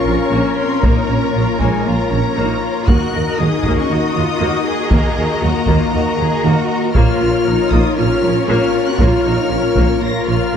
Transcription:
Already playing: pipe organ A#3 F4 A#4 C#5, french horn section C#4, cello section F4, viola section A#4, violin section A#4 C#5 C#6, impact
0.05 double bass section A#1, tuba A#1, viola section F3
0.32 double bass section A#1, tuba A#1, viola section A#3, cello section C#4
0.57 french horn section C4, violin section C6
0.83 double bass section A#1, tuba A#1, viola section A#3, french horn section A#3, cello section D#4, violin section A#5, taiko
1.08 double bass section A#1, tuba A#1, viola section A#3, cello section C#4
1.34 double bass section A#1, tuba A#1, viola section F3, cello section F4
1.59 double bass section A#1, tuba A#1, french horn section G#3, viola section A#3, cello section D#4, violin section G#5, taiko
1.85 tuba A#1, double bass section A#1, french horn section A#3, viola section A#3, cello section F4, violin section A#5
2.11 tuba A#1, double bass section A#1, viola section F3, cello section C#4
2.36 tuba A#1, double bass section A#1, viola section A#3, cello section D#4
2.63 cello section F4
2.87 tuba D#2, double bass section D#2, pipe organ A#3 F#4 A#4 D#5, viola section A#3 F#4, french horn section F#4, cello section F#4, violin section A#4 D#5 F#6, taiko
3.13 tuba D#2, double bass section D#2, viola section A#3, cello section A#4
3.38 tuba D#2, double bass section D#2, viola section F#3, french horn section D#4, cello section G#4, violin section D#6
3.64 tuba D#2, double bass section D#2, viola section A#3, taiko
3.77 french horn section C#4, violin section C#6
3.88 tuba D#2, double bass section D#2, viola section A#3, french horn section D#4, cello section F#4, violin section D#6
4.14 tuba D#2, double bass section D#2, viola section F#3, cello section F4
4.40 tuba D#2, double bass section D#2, viola section A#3, cello section F#4
4.67 cello section G#4
4.90 tuba D#2, double bass section D#2, french horn section A#3, viola section A#3, violin section A#5, taiko
5.16 double bass section D#2, tuba D#2, viola section A#3
5.42 tuba D#2, double bass section D#2, viola section F#3, cello section F#4
5.67 tuba D#2, double bass section D#2, viola section A#3, cello section F4, taiko
5.93 tuba D#2, double bass section D#2, viola section A#3, cello section F#4
6.17 tuba D#2, double bass section D#2, viola section F#3, cello section G#4
6.43 tuba D#2, double bass section D#2, viola section A#3, cello section F#4
6.94 tuba A#1, double bass section A#1, pipe organ A#3 F4 A#4 C#5, viola section A#3 F4, cello section F4, french horn section F4, violin section A#4 C#5 F6, taiko
7.20 tuba A#1, double bass section A#1, viola section A#3
7.45 tuba A#1, double bass section A#1, viola section F3, cello section D#4
7.70 tuba A#1, double bass section A#1, viola section A#3, french horn section D#4, cello section F4, violin section D#6, taiko
7.97 tuba A#1, double bass section A#1, viola section A#3, cello section C#4, french horn section F4, violin section F6
8.22 tuba A#1, double bass section A#1, viola section F3
8.47 tuba A#1, double bass section A#1, viola section A#3, french horn section F4, violin section F6
8.87 french horn section F#4, violin section F#6
8.98 tuba A#1, double bass section A#1, viola section A#3, cello section F4, french horn section F4, violin section F6, taiko
9.24 tuba A#1, double bass section A#1, viola section A#3, cello section D#4
9.50 double bass section A#1, tuba A#1, viola section F3, cello section C#4
9.75 double bass section A#1, tuba A#1, viola section A#3, taiko
10.01 tuba A#1, double bass section A#1, viola section A#3, cello section F4, french horn section A#4, violin section A#6
10.26 tuba A#1, double bass section A#1, viola section F3, french horn section F4, violin section F6
10.53 viola section A#3

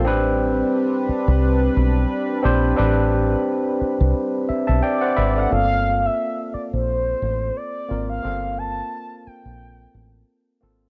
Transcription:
Already playing: analog synth pad C4
0.05 fingered electric bass A1, analog synth pad G3 D4 B4, tine electric piano C4 D4 G4 B4
1.09 muted fingered electric bass stroke
1.28 fingered electric bass C2
1.77 fingered electric bass B1
2.43 fingered electric bass A#1, tine electric piano C4 D4 G4 C5
2.76 fingered electric bass A1, tine electric piano C4 D4 G4 B4
3.81 muted fingered electric bass stroke
4.01 fingered electric bass C2
4.49 tine electric piano E5, muted fingered electric bass stroke
4.67 fingered electric bass B1, tine electric piano E5 A5
4.83 tine electric piano D5 G5, soft synth lead D5
5.01 tine electric piano C5 F#5
5.16 fingered electric bass G#1, tine electric piano B4 E5 B5
5.36 tine electric piano A4 D5, soft synth lead F#5
5.49 fingered electric bass G1, tine electric piano A#3 C4 F4 A4, soft synth lead F5
6.06 soft synth lead E5
6.54 soft synth lead D5, muted fingered electric bass stroke
6.73 fingered electric bass A#1, soft synth lead C5
7.22 fingered electric bass A1
7.57 soft synth lead D5
7.89 fingered electric bass G#1, tine electric piano A#3 C4 F4 A#4
8.10 soft synth lead F5
8.22 fingered electric bass G1, tine electric piano A#3 C4 F4 A4
8.58 soft synth lead A5
9.27 soft synth lead G5, muted fingered electric bass stroke
9.45 fingered electric bass A#1
9.95 fingered electric bass A1
10.60 fingered electric bass G#1, tine electric piano A#3 C4 F4 A4

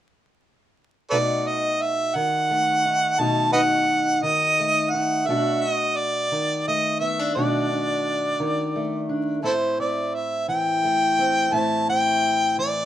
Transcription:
1.10 steel-string acoustic guitar B2 A3 D#4 F#4, harmonica A4 B4 D5
1.47 harmonica D#5
1.82 harmonica E5
2.15 steel-string acoustic guitar D#3, harmonica F#5
2.51 steel-string acoustic guitar A3
2.85 steel-string acoustic guitar D#4
3.19 steel-string acoustic guitar B2 A3 D#4 F#4, harmonica A5
3.53 steel-string acoustic guitar D#4, harmonica B4 D#5 F#5
4.22 steel-string acoustic guitar D#3, harmonica D#5
4.60 steel-string acoustic guitar A3
4.90 harmonica F#5
4.94 steel-string acoustic guitar D#4
5.26 steel-string acoustic guitar B2 A3 D4 F#4, harmonica E5
5.61 harmonica D#5
5.96 harmonica D5
6.32 steel-string acoustic guitar D#3
6.68 steel-string acoustic guitar A3, harmonica D#5
7.00 steel-string acoustic guitar B3, harmonica E5
7.19 steel-string acoustic guitar D4
7.35 steel-string acoustic guitar B2 A3 D4 F#4, harmonica D5
7.72 steel-string acoustic guitar D4
8.40 steel-string acoustic guitar D#3
8.76 steel-string acoustic guitar A3
9.09 steel-string acoustic guitar D4
9.43 steel-string acoustic guitar A2 A3 C4 E4, harmonica E4 A4 C5
9.79 steel-string acoustic guitar C4, harmonica D5
10.14 harmonica E5
10.48 steel-string acoustic guitar E3, harmonica G5
10.85 steel-string acoustic guitar A3
11.19 steel-string acoustic guitar C4
11.52 steel-string acoustic guitar A2 A3 C4 E4, harmonica A5
11.89 steel-string acoustic guitar C4, harmonica G5
12.58 steel-string acoustic guitar E3, harmonica D5

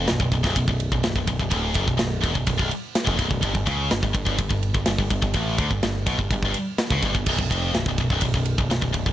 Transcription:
0.08 picked electric bass B0, distorted electric guitar B1, snare, ride
0.20 picked electric bass B0, distorted electric guitar B1, kick
0.32 picked electric bass B0, distorted electric guitar B1, kick, ride
0.43 picked electric bass B0, distorted electric guitar B1, kick, snare
0.56 picked electric bass B0, distorted electric guitar B1, kick, ride
0.68 picked electric bass B0, distorted electric guitar B1, kick
0.80 ride
0.92 picked electric bass B0, distorted electric guitar B1, kick
1.04 picked electric bass B0, distorted electric guitar B1, snare, ride
1.16 picked electric bass B0, distorted electric guitar B1, kick
1.27 picked electric bass B0, distorted electric guitar B1, kick, ride
1.39 picked electric bass B0, distorted electric guitar B1, kick
1.50 picked electric bass D1, distorted electric guitar D2, kick, ride
1.74 picked electric bass F#1, distorted electric guitar F#2, kick, ride
1.87 picked electric bass B0, distorted electric guitar B1, kick
1.97 distorted electric guitar B1, snare, ride
2.02 picked electric bass B0
2.21 picked electric bass E1, distorted electric guitar E2, kick, ride
2.35 picked electric bass B0, distorted electric guitar B1, kick
2.47 picked electric bass B0, distorted electric guitar B1, kick, ride
2.58 picked electric bass B0, distorted electric guitar B1, kick
2.71 ride
2.95 snare, ride
3.05 picked electric bass F1, distorted electric guitar F2, kick
3.17 picked electric bass B0, distorted electric guitar B1, kick, ride
3.29 picked electric bass B0, distorted electric guitar B1, kick
3.42 picked electric bass G1, distorted electric guitar G2, kick, ride
3.54 picked electric bass G1, distorted electric guitar G2, kick
3.66 picked electric bass C#2, distorted electric guitar C#3, kick, ride
3.91 picked electric bass G1, distorted electric guitar G2, snare, ride
4.03 picked electric bass G1, distorted electric guitar G2, kick
4.13 picked electric bass G1, distorted electric guitar G2, kick, ride
4.25 picked electric bass G1, distorted electric guitar G2, kick
4.38 picked electric bass G1, distorted electric guitar G2, kick, ride
4.49 picked electric bass G1, distorted electric guitar G2, kick
4.63 ride
4.74 picked electric bass G1, distorted electric guitar G2, kick
4.86 picked electric bass G1, distorted electric guitar G2, snare, ride
4.98 picked electric bass G1, distorted electric guitar G2, kick
5.10 picked electric bass G1, distorted electric guitar G2, kick, ride
5.22 picked electric bass G1, distorted electric guitar G2, kick
5.34 picked electric bass A1, distorted electric guitar A2, kick, ride
5.58 picked electric bass D2, distorted electric guitar D3, kick, ride
5.71 picked electric bass G1, distorted electric guitar G2, kick
5.83 picked electric bass G1, distorted electric guitar G2, snare, ride
6.07 picked electric bass B1, distorted electric guitar B2, kick, ride
6.19 picked electric bass G1, distorted electric guitar G2, kick
6.30 picked electric bass G1, distorted electric guitar G2, kick, ride
6.43 picked electric bass G1, distorted electric guitar G2, kick
6.54 ride
6.78 snare, ride
6.90 picked electric bass C#2, distorted electric guitar C#3, kick
7.03 picked electric bass G1, distorted electric guitar G2, kick, ride
7.15 picked electric bass G1, distorted electric guitar G2, kick
7.26 picked electric bass B0, distorted electric guitar B1, kick, crash
7.39 picked electric bass B0, distorted electric guitar B1, kick
7.51 picked electric bass F1, distorted electric guitar F2, kick, ride
7.74 picked electric bass B0, distorted electric guitar B1, snare, ride
7.86 picked electric bass B0, distorted electric guitar B1, kick
7.98 picked electric bass B0, distorted electric guitar B1, kick, ride
8.10 picked electric bass B0, distorted electric guitar B1, kick
8.21 picked electric bass B0, distorted electric guitar B1, kick, ride
8.34 picked electric bass B0, distorted electric guitar B1, kick
8.45 ride
8.58 picked electric bass B0, distorted electric guitar B1, kick
8.70 picked electric bass B0, distorted electric guitar B1, snare, ride
8.81 picked electric bass B0, distorted electric guitar B1, kick
8.93 picked electric bass B0, distorted electric guitar B1, kick, ride
9.06 picked electric bass B0, distorted electric guitar B1, kick

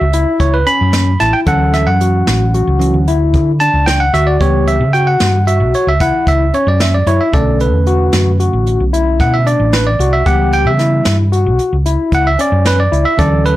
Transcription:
Already playing: tine electric piano E5
0.01 fingered electric bass C#2
0.13 tine electric piano E4, closed hi-hat
0.40 fingered electric bass C#2, tine electric piano C#5, kick, closed hi-hat
0.54 tine electric piano B4
0.66 tine electric piano C#4 B5, closed hi-hat
0.81 fingered electric bass F#2
0.93 snare, closed hi-hat
1.20 fingered electric bass A1, tine electric piano E4 A5, snare, closed hi-hat
1.33 tine electric piano G5
1.46 fingered electric bass D2, tine electric piano E3 F#3 C#4 A4 F#5, kick, closed hi-hat
1.74 tine electric piano E5, snare, closed hi-hat
1.87 fingered electric bass F#2, tine electric piano F#5
2.01 tine electric piano F#4, closed hi-hat
2.27 fingered electric bass A1, snare, closed hi-hat
2.54 tine electric piano F#4, closed hi-hat
2.67 fingered electric bass C#2
2.79 tine electric piano E3 F#3 C#4, closed hi-hat
2.94 fingered electric bass D2
3.08 tine electric piano E4, closed hi-hat
3.34 fingered electric bass D3, kick, closed hi-hat
3.60 tine electric piano D4 A5, closed hi-hat
3.74 fingered electric bass C#2
3.86 tine electric piano G5, snare, closed hi-hat
4.00 tine electric piano F#5
4.13 fingered electric bass D2, tine electric piano F#4 E5, snare, closed hi-hat
4.27 tine electric piano D5
4.40 fingered electric bass C#2, tine electric piano E3 G3 B3 G4 C#5, kick, closed hi-hat
4.68 tine electric piano E5, closed hi-hat
4.81 fingered electric bass C#3
4.93 tine electric piano F#4 G5, closed hi-hat
5.07 tine electric piano F#5
5.20 fingered electric bass G2, snare, closed hi-hat
5.47 tine electric piano F#4 E5, closed hi-hat
5.60 fingered electric bass B1
5.74 tine electric piano C#5, closed hi-hat
5.87 fingered electric bass C#2, tine electric piano E5
6.00 tine electric piano E4 F#5, kick, closed hi-hat
6.27 fingered electric bass C#2, tine electric piano E5, kick, closed hi-hat
6.54 tine electric piano C#4 C#5, closed hi-hat
6.67 fingered electric bass F#2, tine electric piano D5
6.80 tine electric piano E5, snare, closed hi-hat
6.94 tine electric piano D5
7.07 fingered electric bass F#2, tine electric piano E4 C#5, closed hi-hat
7.21 tine electric piano E5
7.33 fingered electric bass B1, tine electric piano D3 A3 C#4 A4 D5, kick, closed hi-hat
7.60 tine electric piano B4, closed hi-hat
7.73 fingered electric bass E2
7.87 tine electric piano F#4, closed hi-hat
8.13 fingered electric bass F#2, snare, closed hi-hat
8.40 tine electric piano F#4, closed hi-hat
8.53 fingered electric bass A1
8.67 closed hi-hat
8.80 fingered electric bass B1
8.93 tine electric piano E4, closed hi-hat
9.20 fingered electric bass B2, tine electric piano F#5, kick, snare, closed hi-hat
9.34 tine electric piano E5
9.46 tine electric piano D4 D5, closed hi-hat
9.60 fingered electric bass A1
9.73 tine electric piano B4, snare, closed hi-hat
9.87 tine electric piano D5
9.99 fingered electric bass C2, tine electric piano F#4, closed hi-hat
10.13 tine electric piano E5
10.26 fingered electric bass C#2, tine electric piano E3 G3 B3 G4 F#5, kick, closed hi-hat
10.53 tine electric piano G5, closed hi-hat
10.65 fingered electric bass C#3, tine electric piano E5
10.79 tine electric piano E4, snare, closed hi-hat
11.05 fingered electric bass G2, snare, closed hi-hat
11.32 tine electric piano F#4, closed hi-hat
11.46 fingered electric bass B1
11.59 closed hi-hat
11.73 fingered electric bass C#2
11.86 tine electric piano E4, closed hi-hat
12.12 fingered electric bass C#2, tine electric piano F#5, kick, closed hi-hat
12.27 tine electric piano E5
12.39 tine electric piano C#4 D5, closed hi-hat
12.52 fingered electric bass F#2
12.66 tine electric piano B4, snare, closed hi-hat
12.80 tine electric piano D5
12.92 fingered electric bass C#2, tine electric piano E4, closed hi-hat
13.05 tine electric piano E5
13.17 fingered electric bass D2, tine electric piano E3 F#3 C#4 A4 D5, kick, closed hi-hat
13.46 tine electric piano B4, closed hi-hat

